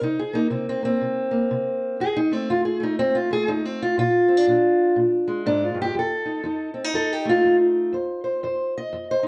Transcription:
steel-string acoustic guitar
0.01 C3 D#4
0.19 G#4
0.33 A#3 D#4
0.50 C3 C4
0.69 C4
0.83 A#3 C4
1.01 C3
1.31 A#3
1.51 C3
2.00 F2 G#4
2.17 D#4
2.31 A3 C4
2.50 F2 F4
2.65 G#4
2.80 A3 D#4
2.99 F2 C4
3.15 F4
3.31 A3 G#4
3.48 F2 D#4
3.65 C4
3.82 F4
3.98 A#2 F4
4.28 C4
4.37 D4
4.47 A#2 D4
4.96 A#2
5.28 G#3
5.46 G#2 D4
5.64 F4
5.74 G2
5.82 G4
5.95 F2
5.99 A4
6.25 D#4
6.44 F2 D#4
6.74 C4
6.84 D#4
6.94 F2 A4
7.13 G4
7.25 A3
7.29 F4
7.45 F2
7.93 F2 C5
8.24 C5
8.43 F2 C5
8.77 D#5
8.93 F2
9.11 C5
9.23 D#4

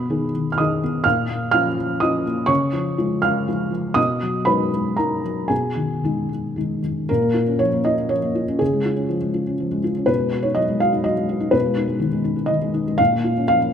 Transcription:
felt piano
Already playing: B2 B3 B4 B5
0.09 D#3 D#4 G#4
0.35 D#3
0.52 F6
0.58 D#3 D#4 G#4 D#5 D#6
0.84 B3
1.04 A#2 F5 F6
1.29 A#3
1.51 F3 C#4 F4 F5 F6
1.78 F3
2.00 F3 C#4 F4 D#5 D#6
2.25 A#3
2.46 C#3 C#5 C#6
2.73 F3
2.98 F3 G#3 F4
3.22 G#3 F5 F6
3.47 F3 G#3 F4
3.70 F3
3.94 B2 D#5 D#6
4.23 F#3
4.45 F#3 G#3 D#4 B4 B5
4.74 G#3
4.97 F#3 G#3 D#4 A#4 A#5
5.24 F#3
5.48 B2 G#4 G#5
5.76 D#3
6.03 D#3 G#3 D#4
6.29 G#3
6.56 D#3 G#3 D#4
6.83 D#3
7.09 A#2 A#4
7.22 A#3
7.34 F4
7.47 C#4
7.59 F3 C#5
7.73 A#3
7.85 F4 D#5
8.09 F3 C#5
8.23 A#3
8.35 F4
8.48 C#4
8.59 C#3 G#4
8.73 G#3
8.85 F4
8.96 C#4
9.09 F3
9.21 G#3
9.34 F4
9.47 C#4
9.60 F3
9.72 G#3
9.84 F4
9.97 C#4
10.06 B2 B4
10.18 G#3
10.32 F#4
10.43 D#4 C#5
10.55 F#3 D#5
10.68 G#3
10.80 F#4 F5
10.93 D#4
11.04 F#3 D#5
11.17 G#3
11.29 F#4
11.40 D#4
11.51 B2 B4
11.66 G#3
11.77 D#4
11.88 G#3
12.00 D#3
12.13 G#3
12.24 D#4
12.36 G#3
12.46 D#3 D#5
12.62 G#3
12.74 D#4
12.87 G#3
12.98 A#2 F5
13.12 A#3
13.24 F4
13.38 C#4
13.48 F3 F5
13.60 A#3

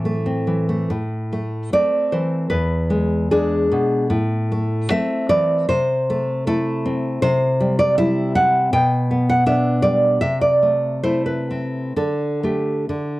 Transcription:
nylon-string guitar
Already playing: A2 E3 C4 A4
0.05 A3
0.26 C4
0.47 E3
0.69 A3
0.90 A2
1.33 A3
1.73 A3 C4 D5
2.12 E3 C5
2.50 E2 B4
2.90 G#3
3.31 G#3 D4 G#4
3.72 B2
4.10 A2
4.52 A3
4.90 A3 C4 E5
5.29 E3 D5
5.69 C3 C5
6.10 A3
6.47 A3 E4 A4
6.86 C4
7.22 C3 C5
7.60 G3
7.79 D5
7.98 G3 E4 E5
8.35 C4 F#5
8.73 B2 G5
9.11 B3
9.29 F#5
9.46 B3 D4 E5
9.82 G3 D5
10.21 C3 E5
10.41 D5
10.62 A3
11.03 A3 E4 C5
11.26 B4
11.51 C4
11.96 D3 A4
12.43 A3 G4
12.89 D3

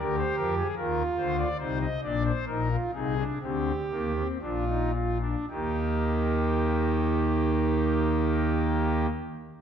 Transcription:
pipe organ
0.00 D2 D3 G4 A#4
0.18 C5
0.37 F2 F3 A#4
0.57 G#4
0.77 D#2 D#3 F4 A#4
1.18 D2 D3 C5
1.38 D5
1.59 C2 C3 D#4 C5
1.81 D#5
2.03 A#1 A#2 D4 D5
2.25 C5
2.47 A#1 A#2 D#4 A#4
2.71 F4
2.94 C2 C3 D#4 G#4
3.18 D4
3.42 D2 D3 C4 G4
3.92 D#2 D#3 A#3
4.16 C4
4.41 A#1 A#2 D4 F4
4.68 D#4
4.94 F4
5.21 D4
5.50 D#2 D#3 A#3 D#4 G4

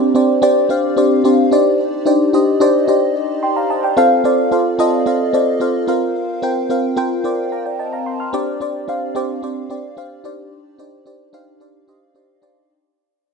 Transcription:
fm electric piano
Already playing: C4 D4 G4 C5 D5
0.15 C4 D4 G4 C5 D5
0.42 C4 D4 G4 C5 D5
0.69 C4 D4 G4 C5 F5
0.97 C4 D4 G4 C5 D5
1.24 C4 D4 G4 C5 D5
1.51 D4 D#4 G4 C5 D5
2.06 D4 D#4 G4 C5 D5
2.33 D4 D#4 G4 C5 D#5
2.60 D4 D#4 G4 C5 D5
2.87 D4 D#4 G4 C5 D5
3.43 G5 C6
3.56 F5 A#5
3.70 D#5 A5
3.84 D5 G5
3.97 C4 F4 A4 C5 F5
4.24 C4 F4 A4 C5 D5
4.51 C4 F4 A4 C5 F5
4.79 C4 F4 A4 C5 D#5
5.06 C4 F4 A4 C5 F5
5.33 C4 F4 A4 C5 D5
5.60 C4 F4 A4 C5 F5
5.87 C4 F4 A#4 C5 F5
6.42 C4 F4 A#4 C5 G5
6.70 C4 F4 A#4 C5 F5
6.96 C4 F4 A#4 C5 G5
7.24 C4 F4 A#4 C5 D5
7.52 F5 A#5
7.66 D5 G5
7.79 D#5 A5
7.93 F5 A#5
8.06 G5 C6
8.20 C6 F6
8.33 C4 D4 G4 C5 D5
8.60 C4 D4 G4 C5 D5
8.88 C4 D4 G4 C5 F5
9.15 C4 D4 G4 C5 D5
9.42 C4 D4 G4 C5 D5
9.70 C4 D4 G4 C5 D5
9.97 C4 D4 G4 C5 F5
10.24 D4 D#4 G4 C5 D5
10.78 D4 D#4 G4 C5 D5
11.06 D4 D#4 G4 C5 D5
11.33 D4 D#4 G4 C5 F5
11.60 D4 D#4 G4 C5 D5
11.87 D4 D#4 G4 C5 D#5
12.15 D4 D#4 G4 C5 D5
12.42 D4 D#4 G4 C5 D5

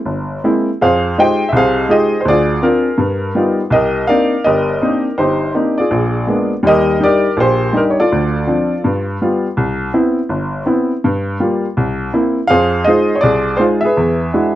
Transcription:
upright piano
0.05 G1
0.44 G#3 A#3 C4 E4
0.81 F2 G#4 C5 F5
1.18 G#3 D#4 F4 G4 C5 D#5 G5
1.49 C2 C3 E5
1.56 G#4 C5 F5
1.89 G#3 D#4 F4 G4 G#4 D#5
2.21 C5
2.25 D2 F4 G#4 D5
2.62 C4 D4 F4 A#4
2.98 G2
3.35 G3 B3 D#4 F4
3.70 C2 G4 A#4 D#5
4.07 A#3 C4 D4 D#4 A#4 D5 F5
4.44 G1 G4 A#4 D#5
4.82 A#3 C4 D4 D#4
5.18 G1 D#4 G4 C5
5.54 A#3 C4 D4 D#4
5.78 F4 G#4 D5
5.91 A#1
6.27 G#3 A#3 B3 D4
6.63 D#2 G3
6.67 G4 A#4 D#5
7.00 G3 D4 D#4 G4 D5
7.05 A#4
7.37 A#1 G4 C5
7.73 G3 D4 D#4 A#4
7.90 C#5
8.00 F4 A4 D5
8.12 D2
8.47 F3 C4 D4
8.84 G2
9.22 G3 B3 F4
9.57 C2
9.94 B3 C4 E4
10.29 G1
10.66 B3 C4 E4
11.04 G2
11.40 G3 A#3 F4
11.77 C2
12.13 A#3 C4 E4
12.47 F2 G#4 C5 F5
12.84 G#3 D#4 F4 G#4 C5 D#5
13.15 C#5
13.21 C2 G#4 D5
13.57 G#3 D#4 F4 C5
13.81 G#4 E5
13.85 B4
13.97 E2
14.34 G#3 D4 E4 F#4

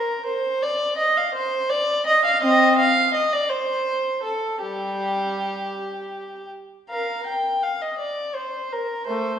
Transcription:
violin
Already playing: A#4
0.26 C5
0.63 D5
0.97 D#5
1.17 F5
1.35 C5
1.70 D5
2.07 D#5
2.25 F5
2.42 C4 D#5
2.79 F5
3.14 D#5
3.33 D5
3.50 C5
4.23 A4
4.61 G3 G4
6.90 A#4 F5
7.27 G5
7.63 F5
7.82 D#5
7.99 D5
8.34 C5
8.72 A#4
9.07 A3 C5

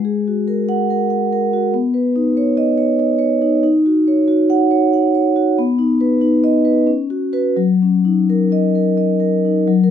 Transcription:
vibraphone
Already playing: G#3
0.05 G#4
0.28 F#4
0.48 A#4
0.69 F#5
0.90 A#4
1.10 F#5
1.33 A#4
1.53 F#4
1.74 B3
1.94 B4
2.16 D#4
2.37 C#5
2.57 D#5
2.78 C#5
2.99 D#5
3.19 C#5
3.42 D#4
3.63 D#4
3.86 F#4
4.08 C#5
4.28 F#4
4.50 F#5
4.71 C#5
4.93 F#5
5.15 C#5
5.36 F#4
5.59 B3
5.79 D#4
6.01 B4
6.21 D#4
6.44 D#5
6.65 B4
6.87 C#4
7.10 F#4
7.33 F#4 B4
7.56 F#3
7.82 C#4
8.05 D#4
8.30 A#4
8.52 D#5
8.75 A#4
8.97 D#5
9.20 A#4
9.45 D#4
9.67 F#3
9.84 A#4

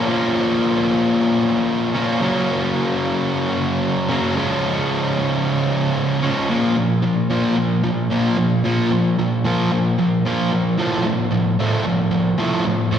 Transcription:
distorted electric guitar
0.07 A#2 F3 A#3 C#4
1.95 A#2 F3 A#3 C#4
2.21 F#2 C#3 F#3 A#3 C#4
4.08 F#2 C#3 F#3 A#3 C#4
4.35 C#3 F3 G#3 C#4
6.23 C#3 F3 G#3 C#4
6.50 A#2 F3 A#3
6.76 A#2 F3
7.03 A#2 F3
7.30 A#2 F3 A#3
7.57 A#2 F3
7.84 A#2 F3
8.10 A#2 F3 A#3
8.37 A#2 F3
8.64 A#2 F3 A#3
8.92 A#2 F3
9.19 A#2 F3
9.45 A#2 F3 A#3
9.72 A#2 F3
9.98 A#2 F3
10.25 A#2 F3 A#3
10.52 A#2 F3
10.78 A2 F3 A3
11.06 A2 F3
11.31 A2 F3
11.59 A2 F3 A3
11.85 A2 F3
12.11 A2 F3
12.38 A2 F3 A3
12.65 A2 F3
12.91 A2 F3 A3

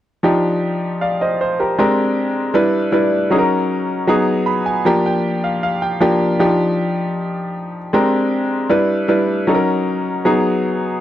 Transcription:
grand piano
0.23 F3 D4 D#4 G4
1.01 D5 F5
1.21 C5 D#5
1.41 C5
1.60 G4 A#4
1.78 G#3 C4 D4 G4 A#4
2.54 G3 D4 E4 B4
2.92 G3 D4 E4 B4
3.30 F#3 C#4 D#4 G#4
3.38 A#4
4.07 F#3 B3 D#4 G#4
4.46 B5
4.66 G#5
4.85 F3 A#3 D4 G4 A#5
5.06 G5
5.44 F5
5.63 F5
5.82 G5
6.00 F3 A#3 D4 G4
6.39 F3 D4 D#4 G4
7.93 G#3 C4 D4 G4 A#4
8.69 G3 D4 E4 B4
9.08 G3 D4 E4 B4
9.47 F#3 C#4 D#4 A4
9.55 A#4
10.25 F#3 B3 D#4 G#4

